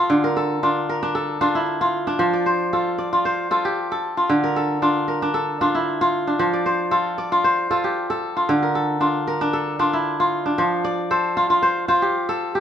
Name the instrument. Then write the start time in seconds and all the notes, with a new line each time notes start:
kora
Already playing: F3 F4 G4 A4 C5
0.10 D3
0.24 A#4
0.37 A4
0.63 D4 F4
0.89 A#4
1.03 D4
1.15 A4
1.41 D4 F4
1.55 E4
1.81 F4
2.07 D4
2.19 F3
2.33 D5
2.46 C5
2.73 F4 A4
2.98 D5
3.13 F4
3.25 C5
3.51 F4 A4
3.65 G4
3.92 A4
4.17 F4
4.29 D3
4.44 A#4
4.56 A4
4.82 D4 F4
5.08 A#4
5.22 D4
5.34 A4
5.61 D4 F4
5.75 E4
6.01 F4
6.27 D4
6.39 F3
6.53 D5
6.66 C5
6.91 F4 A4
7.18 D5
7.32 F4
7.44 C5
7.71 F4 A4
7.84 G4
8.10 A4
8.37 F4
8.49 D3
8.63 A#4
8.75 A4
9.00 D4 F4
9.27 A#4
9.41 D4
9.53 A4
9.79 D4 F4
9.93 E4
10.20 F4
10.46 D4
10.58 F3
10.84 D5
11.11 A4 C5
11.37 F4
11.50 F4
11.62 C5
11.88 F4 C5
12.02 G4
12.29 A4
12.55 G4